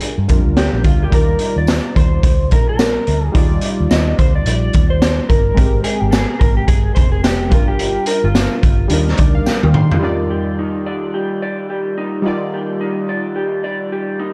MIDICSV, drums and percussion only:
0, 0, Header, 1, 2, 480
1, 0, Start_track
1, 0, Key_signature, -3, "major"
1, 0, Tempo, 556070
1, 973, Time_signature, 4, 2, 24, 8
1, 12371, End_track
2, 0, Start_track
2, 0, Title_t, "Drums"
2, 5, Note_on_c, 9, 42, 99
2, 91, Note_off_c, 9, 42, 0
2, 248, Note_on_c, 9, 42, 67
2, 256, Note_on_c, 9, 36, 87
2, 334, Note_off_c, 9, 42, 0
2, 342, Note_off_c, 9, 36, 0
2, 490, Note_on_c, 9, 38, 106
2, 493, Note_on_c, 9, 42, 98
2, 576, Note_off_c, 9, 38, 0
2, 579, Note_off_c, 9, 42, 0
2, 727, Note_on_c, 9, 42, 72
2, 730, Note_on_c, 9, 36, 87
2, 813, Note_off_c, 9, 42, 0
2, 817, Note_off_c, 9, 36, 0
2, 969, Note_on_c, 9, 36, 100
2, 970, Note_on_c, 9, 42, 82
2, 1056, Note_off_c, 9, 36, 0
2, 1056, Note_off_c, 9, 42, 0
2, 1198, Note_on_c, 9, 42, 79
2, 1285, Note_off_c, 9, 42, 0
2, 1444, Note_on_c, 9, 54, 69
2, 1453, Note_on_c, 9, 38, 102
2, 1462, Note_on_c, 9, 42, 85
2, 1531, Note_off_c, 9, 54, 0
2, 1539, Note_off_c, 9, 38, 0
2, 1548, Note_off_c, 9, 42, 0
2, 1694, Note_on_c, 9, 36, 92
2, 1694, Note_on_c, 9, 42, 71
2, 1780, Note_off_c, 9, 36, 0
2, 1780, Note_off_c, 9, 42, 0
2, 1928, Note_on_c, 9, 36, 106
2, 1928, Note_on_c, 9, 42, 93
2, 2014, Note_off_c, 9, 36, 0
2, 2014, Note_off_c, 9, 42, 0
2, 2167, Note_on_c, 9, 42, 75
2, 2176, Note_on_c, 9, 36, 93
2, 2254, Note_off_c, 9, 42, 0
2, 2262, Note_off_c, 9, 36, 0
2, 2408, Note_on_c, 9, 54, 68
2, 2410, Note_on_c, 9, 38, 116
2, 2413, Note_on_c, 9, 42, 104
2, 2494, Note_off_c, 9, 54, 0
2, 2496, Note_off_c, 9, 38, 0
2, 2500, Note_off_c, 9, 42, 0
2, 2650, Note_on_c, 9, 42, 73
2, 2736, Note_off_c, 9, 42, 0
2, 2890, Note_on_c, 9, 42, 85
2, 2891, Note_on_c, 9, 36, 109
2, 2976, Note_off_c, 9, 42, 0
2, 2977, Note_off_c, 9, 36, 0
2, 3119, Note_on_c, 9, 42, 91
2, 3206, Note_off_c, 9, 42, 0
2, 3372, Note_on_c, 9, 54, 74
2, 3375, Note_on_c, 9, 38, 88
2, 3383, Note_on_c, 9, 42, 79
2, 3458, Note_off_c, 9, 54, 0
2, 3461, Note_off_c, 9, 38, 0
2, 3470, Note_off_c, 9, 42, 0
2, 3613, Note_on_c, 9, 42, 66
2, 3615, Note_on_c, 9, 36, 92
2, 3700, Note_off_c, 9, 42, 0
2, 3702, Note_off_c, 9, 36, 0
2, 3849, Note_on_c, 9, 42, 100
2, 3935, Note_off_c, 9, 42, 0
2, 4085, Note_on_c, 9, 42, 67
2, 4096, Note_on_c, 9, 36, 93
2, 4172, Note_off_c, 9, 42, 0
2, 4183, Note_off_c, 9, 36, 0
2, 4332, Note_on_c, 9, 38, 113
2, 4334, Note_on_c, 9, 54, 71
2, 4335, Note_on_c, 9, 42, 104
2, 4418, Note_off_c, 9, 38, 0
2, 4420, Note_off_c, 9, 54, 0
2, 4422, Note_off_c, 9, 42, 0
2, 4571, Note_on_c, 9, 42, 72
2, 4572, Note_on_c, 9, 36, 90
2, 4657, Note_off_c, 9, 42, 0
2, 4659, Note_off_c, 9, 36, 0
2, 4811, Note_on_c, 9, 36, 93
2, 4812, Note_on_c, 9, 42, 81
2, 4898, Note_off_c, 9, 36, 0
2, 4898, Note_off_c, 9, 42, 0
2, 5042, Note_on_c, 9, 42, 91
2, 5128, Note_off_c, 9, 42, 0
2, 5286, Note_on_c, 9, 54, 74
2, 5291, Note_on_c, 9, 38, 101
2, 5300, Note_on_c, 9, 42, 82
2, 5372, Note_off_c, 9, 54, 0
2, 5377, Note_off_c, 9, 38, 0
2, 5386, Note_off_c, 9, 42, 0
2, 5533, Note_on_c, 9, 36, 100
2, 5533, Note_on_c, 9, 42, 70
2, 5619, Note_off_c, 9, 36, 0
2, 5619, Note_off_c, 9, 42, 0
2, 5765, Note_on_c, 9, 42, 106
2, 5767, Note_on_c, 9, 36, 109
2, 5852, Note_off_c, 9, 42, 0
2, 5853, Note_off_c, 9, 36, 0
2, 6006, Note_on_c, 9, 42, 74
2, 6015, Note_on_c, 9, 36, 93
2, 6092, Note_off_c, 9, 42, 0
2, 6102, Note_off_c, 9, 36, 0
2, 6250, Note_on_c, 9, 54, 68
2, 6251, Note_on_c, 9, 38, 121
2, 6255, Note_on_c, 9, 42, 100
2, 6336, Note_off_c, 9, 54, 0
2, 6338, Note_off_c, 9, 38, 0
2, 6341, Note_off_c, 9, 42, 0
2, 6486, Note_on_c, 9, 42, 71
2, 6490, Note_on_c, 9, 36, 100
2, 6572, Note_off_c, 9, 42, 0
2, 6576, Note_off_c, 9, 36, 0
2, 6726, Note_on_c, 9, 42, 86
2, 6812, Note_off_c, 9, 42, 0
2, 6958, Note_on_c, 9, 42, 91
2, 7044, Note_off_c, 9, 42, 0
2, 7207, Note_on_c, 9, 38, 96
2, 7209, Note_on_c, 9, 54, 72
2, 7216, Note_on_c, 9, 42, 87
2, 7293, Note_off_c, 9, 38, 0
2, 7296, Note_off_c, 9, 54, 0
2, 7302, Note_off_c, 9, 42, 0
2, 7449, Note_on_c, 9, 42, 72
2, 7451, Note_on_c, 9, 36, 91
2, 7535, Note_off_c, 9, 42, 0
2, 7538, Note_off_c, 9, 36, 0
2, 7680, Note_on_c, 9, 42, 102
2, 7766, Note_off_c, 9, 42, 0
2, 7838, Note_on_c, 9, 38, 34
2, 7919, Note_on_c, 9, 42, 79
2, 7924, Note_off_c, 9, 38, 0
2, 7932, Note_on_c, 9, 36, 97
2, 8005, Note_off_c, 9, 42, 0
2, 8018, Note_off_c, 9, 36, 0
2, 8169, Note_on_c, 9, 54, 69
2, 8172, Note_on_c, 9, 38, 57
2, 8255, Note_off_c, 9, 54, 0
2, 8259, Note_off_c, 9, 38, 0
2, 8315, Note_on_c, 9, 48, 61
2, 8401, Note_off_c, 9, 48, 0
2, 8409, Note_on_c, 9, 45, 94
2, 8495, Note_off_c, 9, 45, 0
2, 8559, Note_on_c, 9, 43, 93
2, 8645, Note_off_c, 9, 43, 0
2, 12371, End_track
0, 0, End_of_file